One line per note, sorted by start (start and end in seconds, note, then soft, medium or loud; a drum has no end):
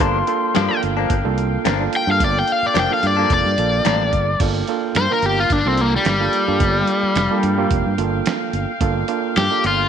0.00 0.21 G1 loud
0.00 0.17 G2 medium
0.00 0.18 F3 medium
0.00 0.24 A#3 medium
0.00 0.18 A#3 medium
0.00 0.24 D4 medium
0.00 0.18 D4 medium
0.00 0.24 F4 medium
0.00 0.25 A4 medium
0.00 4.23 F5 medium
0.00 4.23 G5 medium
0.00 0.81 C6 loud
0.00 kick loud
0.00 closed hi-hat medium
0.27 0.64 A#3 medium
0.27 0.64 D4 medium
0.27 0.64 F4 medium
0.27 0.64 A4 medium
0.27 closed hi-hat medium
0.55 0.72 G2 medium
0.55 0.67 G2 medium
0.55 0.73 F3 medium
0.55 0.73 A#3 medium
0.55 0.73 D4 loud
0.55 snare loud
0.55 closed hi-hat medium
0.69 1.17 A#3 medium
0.69 1.17 D4 medium
0.69 1.17 F4 medium
0.69 1.17 A4 medium
0.83 1.04 G1 medium
0.83 closed hi-hat medium
0.97 1.15 F3 soft
0.97 1.14 A#3 medium
0.97 1.13 D4 medium
1.10 1.21 G1 medium
1.10 kick medium
1.10 closed hi-hat medium
1.25 1.56 C2 medium
1.25 1.72 A#3 medium
1.25 1.72 D4 medium
1.25 1.72 F4 medium
1.25 1.72 A4 loud
1.38 closed hi-hat medium
1.65 1.86 G1 medium
1.65 1.82 G2 medium
1.65 1.83 F3 medium
1.65 1.83 A#3 medium
1.65 1.83 D4 medium
1.65 snare loud
1.65 closed hi-hat medium
1.80 2.04 A#3 medium
1.80 2.04 D4 medium
1.80 2.04 F4 medium
1.80 2.04 A4 medium
1.93 2.09 G5 medium
1.93 closed hi-hat medium
2.07 2.22 G2 medium
2.07 2.79 A#3 medium
2.07 2.79 D4 medium
2.07 2.79 F4 medium
2.07 2.79 A4 medium
2.11 2.22 F5 medium
2.20 2.41 G1 loud
2.20 2.37 D5 medium
2.20 kick loud
2.20 closed hi-hat medium
2.39 2.52 G5 medium
2.48 closed hi-hat medium
2.52 2.64 F5 medium
2.63 2.77 D5 medium
2.63 muted fingered electric bass stroke soft
2.74 2.87 F1 medium
2.74 2.92 G2 medium
2.74 2.93 F3 medium
2.74 2.93 A#3 medium
2.74 2.93 D4 medium
2.74 snare loud
2.74 closed hi-hat medium
2.79 2.92 G5 medium
2.90 3.14 A#3 medium
2.90 3.14 D4 medium
2.90 3.14 F4 medium
2.90 3.14 A4 medium
2.90 3.04 F5 medium
3.03 3.24 G2 medium
3.03 3.32 D5 medium
3.03 closed hi-hat medium
3.17 3.35 F3 soft
3.17 3.53 A#3 medium
3.17 3.34 A#3 soft
3.17 3.33 D4 medium
3.17 3.53 D4 medium
3.17 3.53 F4 medium
3.17 3.54 A4 medium
3.30 3.41 F1 medium
3.30 4.39 D5 loud
3.30 kick medium
3.30 closed hi-hat medium
3.45 3.55 G2 medium
3.58 3.83 A#1 medium
3.58 4.31 A#3 medium
3.58 4.31 D4 medium
3.58 4.31 F4 medium
3.58 4.31 A4 medium
3.58 closed hi-hat medium
3.85 4.10 A1 medium
3.85 4.02 G2 medium
3.85 4.03 F3 medium
3.85 4.03 A#3 medium
3.85 4.04 D4 medium
3.85 snare loud
3.85 closed hi-hat medium
4.13 4.38 G1 medium
4.13 kick medium
4.13 closed hi-hat medium
4.40 4.61 G1 medium
4.40 4.65 A#3 medium
4.40 4.65 D4 medium
4.40 4.65 F4 medium
4.40 4.65 A4 medium
4.40 9.88 F5 medium
4.40 9.88 G5 medium
4.40 kick loud
4.40 closed hi-hat medium
4.40 crash medium
4.67 5.05 A#3 medium
4.67 5.05 D4 medium
4.67 5.05 F4 medium
4.67 5.05 A4 medium
4.67 closed hi-hat medium
4.95 5.07 G2 medium
4.95 5.11 C5 loud
4.95 snare medium
4.95 closed hi-hat medium
5.10 5.58 A#3 medium
5.10 5.58 D4 medium
5.10 5.58 F4 medium
5.10 5.58 A#4 medium
5.10 5.26 A#4 medium
5.22 5.44 G1 medium
5.22 5.39 G4 medium
5.22 closed hi-hat medium
5.40 5.52 F4 medium
5.50 5.61 G1 medium
5.50 5.67 D4 medium
5.50 kick medium
5.50 closed hi-hat medium
5.65 5.96 C2 medium
5.65 6.13 A#3 medium
5.65 5.81 C4 medium
5.65 6.13 D4 medium
5.65 6.13 F4 medium
5.65 6.13 A4 medium
5.77 5.94 A#3 medium
5.77 closed hi-hat medium
5.96 6.07 G3 medium
6.05 6.27 G1 medium
6.05 snare loud
6.05 closed hi-hat medium
6.09 7.69 G3 medium
6.20 6.44 A#3 medium
6.20 6.44 D4 medium
6.20 6.44 F4 medium
6.20 6.44 A4 medium
6.33 closed hi-hat medium
6.47 6.62 G2 medium
6.47 7.19 A#3 medium
6.47 7.19 D4 medium
6.47 7.19 F4 medium
6.47 7.19 A4 medium
6.60 6.81 G1 loud
6.60 kick loud
6.60 closed hi-hat medium
6.87 closed hi-hat medium
7.03 muted fingered electric bass stroke soft
7.16 7.27 F1 medium
7.16 snare loud
7.16 closed hi-hat medium
7.31 7.54 A#3 medium
7.31 7.55 D4 medium
7.31 7.54 F4 medium
7.31 7.55 A4 medium
7.43 7.64 G2 medium
7.43 closed hi-hat medium
7.58 7.93 A#3 loud
7.58 7.94 D4 medium
7.58 7.94 F4 medium
7.58 7.94 G4 loud
7.71 7.82 F1 medium
7.71 kick medium
7.71 closed hi-hat medium
7.86 7.96 G2 medium
7.98 8.20 G1 medium
7.98 8.71 A#3 medium
7.98 8.71 D4 medium
7.98 8.71 F4 medium
7.98 8.71 A4 medium
7.98 closed hi-hat medium
8.26 snare loud
8.26 closed hi-hat medium
8.53 8.65 G1 medium
8.53 closed hi-hat medium
8.81 9.02 G1 medium
8.81 9.05 A#3 medium
8.81 9.05 D4 medium
8.81 9.05 F4 medium
8.81 9.05 A4 medium
8.81 kick loud
8.81 closed hi-hat medium
9.08 9.45 A#3 medium
9.08 9.45 D4 medium
9.08 9.45 F4 medium
9.08 9.45 A4 medium
9.08 closed hi-hat medium
9.36 9.48 G2 medium
9.36 9.64 G4 loud
9.36 snare medium
9.36 closed hi-hat medium
9.51 9.88 A#3 medium
9.51 9.88 D4 medium
9.51 9.88 F4 medium
9.51 9.88 A4 medium
9.64 9.85 G1 loud
9.64 9.88 F4 medium
9.64 closed hi-hat medium